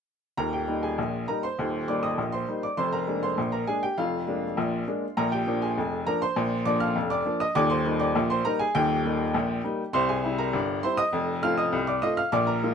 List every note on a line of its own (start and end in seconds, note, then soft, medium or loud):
0.37 0.63 D#1 medium
0.37 0.63 D#2 medium
0.37 0.52 A#4 medium
0.37 0.53 A#5 medium
0.53 0.81 G4 medium
0.53 0.83 G5 medium
0.68 0.84 G3 soft
0.68 0.85 A#3 soft
0.68 0.85 D#4 medium
0.83 1.25 G#4 medium
0.83 1.28 G#5 medium
0.98 1.24 A#1 medium
0.98 1.24 A#2 medium
1.28 1.45 G3 soft
1.28 1.45 A#3 soft
1.28 1.45 D#4 medium
1.28 1.42 A#4 medium
1.28 1.43 A#5 medium
1.43 1.86 C5 medium
1.43 1.88 C6 medium
1.59 1.84 D#1 medium
1.59 1.84 D#2 medium
1.88 2.05 G3 soft
1.88 2.05 A#3 soft
1.88 2.05 D#4 medium
1.88 2.02 D5 medium
1.88 2.03 D6 medium
2.03 2.31 D#5 medium
2.03 2.33 D#6 medium
2.18 2.43 A#1 medium
2.18 2.43 A#2 medium
2.32 2.61 C5 medium
2.32 2.62 C6 medium
2.48 2.65 G3 soft
2.48 2.65 A#3 soft
2.48 2.65 D#4 medium
2.63 2.78 D5 medium
2.63 2.78 D6 medium
2.77 3.03 F1 medium
2.77 3.03 F2 medium
2.77 2.92 C5 medium
2.77 2.92 C6 medium
2.93 3.21 A#4 medium
2.93 3.22 A#5 medium
3.08 3.24 G#3 soft
3.08 3.25 A#3 soft
3.08 3.25 D4 medium
3.23 3.51 C5 medium
3.23 3.52 C6 medium
3.38 3.63 A#1 medium
3.38 3.63 A#2 medium
3.52 3.67 A#4 medium
3.52 3.67 A#5 medium
3.67 3.84 G#3 soft
3.67 3.84 A#3 soft
3.67 3.85 D4 medium
3.67 3.82 G#4 medium
3.67 3.82 G#5 medium
3.83 3.97 G4 medium
3.83 3.97 G5 medium
3.98 4.23 F1 medium
3.98 4.23 F2 medium
3.98 5.14 F4 medium
3.98 5.17 F5 medium
4.28 4.44 G#3 medium
4.28 4.44 A#3 soft
4.28 4.45 D4 medium
4.57 4.83 A#1 medium
4.57 4.83 A#2 medium
4.88 5.04 G#3 medium
4.88 5.04 A#3 medium
4.88 5.04 D4 medium
5.17 5.42 A#1 medium
5.17 5.42 A#2 medium
5.17 5.31 A#4 medium
5.17 5.32 A#5 medium
5.32 5.60 G4 medium
5.32 5.62 G5 medium
5.47 5.63 F3 medium
5.47 5.64 A#3 medium
5.47 5.64 D4 medium
5.62 6.04 G#4 medium
5.62 6.06 G#5 medium
5.77 6.02 F1 medium
5.77 6.02 F2 medium
6.07 6.23 F3 medium
6.07 6.23 A#3 medium
6.07 6.24 D4 medium
6.07 6.21 A#4 medium
6.07 6.21 A#5 loud
6.22 6.63 C5 medium
6.22 6.66 C6 loud
6.36 6.62 A#1 medium
6.36 6.61 A#2 loud
6.65 6.82 F3 medium
6.65 6.83 A#3 medium
6.65 6.83 D4 medium
6.65 6.80 D5 medium
6.65 6.80 D6 loud
6.80 7.09 F5 medium
6.80 7.10 F6 medium
6.95 7.21 F1 medium
6.95 7.21 F2 medium
7.10 7.39 D5 medium
7.10 7.40 D6 loud
7.26 7.42 F3 medium
7.26 7.42 A#3 medium
7.26 7.42 D4 medium
7.40 7.55 D#5 medium
7.40 7.55 D#6 loud
7.55 7.81 D#1 medium
7.55 7.81 D#2 loud
7.55 7.70 D5 medium
7.55 7.70 D6 loud
7.70 7.98 C5 medium
7.70 8.00 C6 medium
7.85 8.02 G3 medium
7.85 8.02 A#3 medium
7.85 8.02 D#4 medium
8.00 8.28 D5 medium
8.00 8.30 D6 medium
8.15 8.40 A#1 medium
8.15 8.41 A#2 medium
8.30 8.44 C5 medium
8.30 8.45 C6 loud
8.45 8.61 G3 medium
8.45 8.62 A#3 medium
8.45 8.62 D#4 medium
8.45 8.59 A#4 medium
8.45 8.60 A#5 loud
8.59 8.74 G#4 medium
8.59 8.74 G#5 loud
8.75 9.00 D#1 medium
8.75 9.00 D#2 medium
8.75 9.91 G4 medium
8.75 9.94 G5 loud
9.05 9.21 G3 medium
9.05 9.21 A#3 medium
9.05 9.22 D#4 medium
9.34 9.60 A#1 medium
9.34 9.60 A#2 medium
9.64 9.81 G3 medium
9.64 9.81 A#3 medium
9.64 9.81 D#4 medium
9.93 10.19 C2 loud
9.93 10.19 C3 medium
9.93 10.08 C5 medium
9.93 10.09 C6 loud
10.09 10.37 G#4 medium
10.09 10.39 G#5 medium
10.24 10.41 G3 medium
10.24 10.41 C4 medium
10.24 10.41 E4 medium
10.38 10.81 A#4 medium
10.38 10.83 A#5 medium
10.53 10.79 G1 medium
10.53 10.79 G2 medium
10.83 11.00 G3 medium
10.83 11.00 C4 medium
10.83 11.01 E4 medium
10.83 10.98 C5 medium
10.83 10.98 C6 loud
10.97 11.40 D#5 medium
10.97 11.43 D#6 loud
11.13 11.38 F1 medium
11.13 11.38 F2 loud
11.43 11.60 A3 medium
11.43 11.60 C4 medium
11.43 11.60 F4 medium
11.43 11.58 F5 medium
11.43 11.58 F6 loud
11.58 11.86 D#5 medium
11.58 11.88 D#6 medium
11.72 11.98 C2 medium
11.72 11.98 C3 medium
11.87 12.02 D5 medium
11.87 12.03 D6 medium
12.02 12.19 A3 medium
12.02 12.19 C4 medium
12.02 12.20 F4 medium
12.02 12.17 D#5 medium
12.02 12.18 D#6 loud
12.17 12.32 F5 medium
12.17 12.33 F6 loud
12.32 12.58 A#1 medium
12.32 12.58 A#2 medium
12.32 12.47 D5 medium
12.32 12.48 D6 loud
12.47 12.74 A#4 medium
12.47 12.74 A#5 medium
12.63 12.74 G#3 medium
12.63 12.74 A#3 medium
12.63 12.74 F4 medium